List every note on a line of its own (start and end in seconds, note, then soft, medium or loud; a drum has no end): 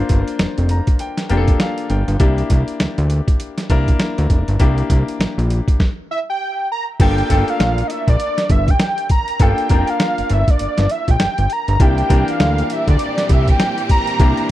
0.00 1.29 A#3 medium
0.00 1.30 D4 medium
0.00 1.30 F4 medium
0.00 2.22 A#4 medium
0.00 0.62 C5 medium
0.09 0.24 G1 loud
0.09 kick medium
0.09 closed hi-hat medium
0.28 closed hi-hat medium
0.39 0.47 F1 soft
0.39 snare loud
0.39 closed hi-hat medium
0.58 0.81 F1 medium
0.58 closed hi-hat medium
0.69 0.98 A#5 medium
0.69 closed hi-hat medium
0.87 kick medium
0.87 closed hi-hat soft
0.99 1.28 G5 medium
0.99 closed hi-hat medium
1.17 snare medium
1.17 closed hi-hat medium
1.29 1.53 F1 medium
1.29 1.89 A#3 medium
1.29 1.89 D4 medium
1.29 1.89 F4 medium
1.29 1.38 G4 medium
1.29 1.58 G5 medium
1.29 closed hi-hat medium
1.37 1.93 A4 medium
1.48 kick medium
1.48 closed hi-hat medium
1.60 1.88 F5 medium
1.60 snare loud
1.60 closed hi-hat medium
1.78 closed hi-hat medium
1.90 2.04 G1 medium
1.90 2.18 G5 medium
1.90 closed hi-hat medium
2.08 2.17 G1 loud
2.08 closed hi-hat medium
2.19 2.43 C2 loud
2.19 3.01 A#3 medium
2.19 3.01 D4 medium
2.19 3.01 E4 medium
2.19 3.01 G4 medium
2.19 kick loud
2.19 closed hi-hat medium
2.38 closed hi-hat soft
2.50 2.64 C2 loud
2.50 kick medium
2.50 closed hi-hat medium
2.68 closed hi-hat medium
2.80 2.88 D2 soft
2.80 snare loud
2.80 closed hi-hat medium
2.98 3.21 D2 loud
2.98 closed hi-hat medium
3.10 closed hi-hat medium
3.28 kick medium
3.28 closed hi-hat soft
3.40 closed hi-hat medium
3.58 snare medium
3.58 closed hi-hat medium
3.70 3.93 C2 medium
3.70 4.29 A#3 medium
3.70 4.29 D4 medium
3.70 4.30 E4 medium
3.70 4.30 A#4 medium
3.70 kick medium
3.70 closed hi-hat medium
3.88 kick medium
3.88 closed hi-hat medium
4.00 snare loud
4.00 closed hi-hat medium
4.18 4.27 D2 medium
4.18 closed hi-hat medium
4.30 4.44 F1 medium
4.30 kick medium
4.30 closed hi-hat medium
4.48 4.57 G1 medium
4.48 closed hi-hat medium
4.59 4.83 C2 loud
4.59 5.41 A#3 medium
4.59 5.41 D4 medium
4.59 5.41 E4 medium
4.59 5.42 G4 medium
4.59 kick loud
4.59 closed hi-hat medium
4.78 closed hi-hat medium
4.90 5.04 C2 loud
4.90 kick medium
4.90 closed hi-hat medium
5.08 closed hi-hat medium
5.19 5.27 A#1 medium
5.19 snare loud
5.19 closed hi-hat medium
5.38 5.61 A#1 medium
5.38 closed hi-hat medium
5.50 closed hi-hat medium
5.68 kick medium
5.68 closed hi-hat soft
5.80 kick loud
5.80 snare medium
6.11 6.19 E5 loud
6.30 6.68 G5 loud
6.72 6.85 A#5 medium
7.00 7.23 G1 loud
7.00 7.22 A#3 medium
7.00 7.22 D4 medium
7.00 7.22 F4 medium
7.00 7.23 A4 medium
7.00 7.51 G5 loud
7.00 kick loud
7.00 closed hi-hat medium
7.00 crash medium
7.18 closed hi-hat medium
7.30 7.44 G1 loud
7.30 7.38 A3 medium
7.30 8.11 D4 medium
7.30 8.11 F4 medium
7.30 8.12 A4 medium
7.30 kick medium
7.30 closed hi-hat medium
7.37 8.14 A#3 medium
7.48 7.89 F5 loud
7.48 closed hi-hat medium
7.60 7.83 A#1 medium
7.60 snare loud
7.60 closed hi-hat medium
7.78 closed hi-hat medium
7.87 7.93 D#5 medium
7.87 8.09 E5 medium
7.87 closed hi-hat medium
8.08 8.17 A#1 loud
8.08 8.53 D5 loud
8.08 kick medium
8.08 closed hi-hat soft
8.20 closed hi-hat medium
8.38 snare medium
8.38 closed hi-hat medium
8.50 8.73 G1 medium
8.50 8.72 E5 loud
8.50 kick medium
8.50 closed hi-hat medium
8.68 9.11 G5 loud
8.68 kick medium
8.68 closed hi-hat soft
8.80 snare loud
8.80 closed hi-hat medium
8.98 closed hi-hat medium
9.10 9.44 A#5 loud
9.10 kick medium
9.10 closed hi-hat medium
9.28 closed hi-hat medium
9.39 9.54 G1 loud
9.39 9.62 A#3 medium
9.39 9.62 D4 medium
9.39 9.62 F4 medium
9.39 9.62 A4 medium
9.39 9.91 G5 loud
9.39 kick loud
9.39 closed hi-hat medium
9.58 closed hi-hat soft
9.69 9.84 F1 medium
9.69 10.51 A#3 medium
9.69 10.51 D4 medium
9.69 10.52 F4 medium
9.69 10.52 A#4 medium
9.69 kick medium
9.69 closed hi-hat medium
9.87 10.34 F5 loud
9.87 closed hi-hat medium
10.00 snare loud
10.00 closed hi-hat medium
10.18 10.23 G1 soft
10.18 closed hi-hat medium
10.30 10.44 G1 loud
10.30 10.52 E5 medium
10.30 closed hi-hat medium
10.48 10.93 D5 loud
10.48 kick medium
10.48 closed hi-hat soft
10.59 10.68 G1 medium
10.59 closed hi-hat medium
10.78 10.88 G1 medium
10.78 snare medium
10.78 closed hi-hat medium
10.89 11.12 E5 medium
10.89 closed hi-hat medium
11.08 11.17 A#1 medium
11.08 11.54 G5 loud
11.08 kick medium
11.08 closed hi-hat medium
11.20 11.28 G1 soft
11.20 snare loud
11.20 closed hi-hat medium
11.38 11.47 G1 medium
11.38 closed hi-hat medium
11.50 11.84 A#5 medium
11.50 closed hi-hat medium
11.68 11.77 G1 loud
11.68 closed hi-hat medium
11.79 12.03 C2 loud
11.79 14.51 A#2 medium
11.79 14.51 E3 medium
11.79 14.51 G3 medium
11.79 12.02 A#3 medium
11.79 14.51 C4 medium
11.79 12.02 D4 medium
11.79 12.02 E4 medium
11.79 14.51 G4 medium
11.79 12.02 G4 medium
11.79 12.32 G5 medium
11.79 kick loud
11.79 closed hi-hat medium
11.98 closed hi-hat soft
12.09 12.24 C2 loud
12.09 12.91 E3 medium
12.09 12.91 A#3 medium
12.09 12.91 D4 medium
12.09 12.91 A#4 medium
12.09 kick medium
12.09 closed hi-hat medium
12.28 12.74 F5 loud
12.28 closed hi-hat medium
12.40 12.63 D2 medium
12.40 snare loud
12.40 closed hi-hat medium
12.58 closed hi-hat medium
12.70 12.89 E5 medium
12.70 closed hi-hat medium
12.88 12.97 D2 loud
12.88 13.34 D5 loud
12.88 kick medium
12.88 closed hi-hat soft
12.99 closed hi-hat medium
13.18 snare medium
13.18 closed hi-hat medium
13.29 13.53 C2 medium
13.29 13.51 E5 medium
13.29 kick loud
13.29 closed hi-hat medium
13.48 13.91 G5 loud
13.48 kick medium
13.48 closed hi-hat medium
13.60 snare loud
13.60 closed hi-hat medium
13.78 closed hi-hat medium
13.89 14.46 A#5 loud
13.89 kick medium
13.89 closed hi-hat medium
14.07 closed hi-hat medium
14.20 14.34 C2 loud
14.20 14.42 A#3 medium
14.20 14.42 D4 medium
14.20 14.42 E4 medium
14.20 14.43 G4 medium
14.20 kick loud
14.20 closed hi-hat medium
14.37 closed hi-hat medium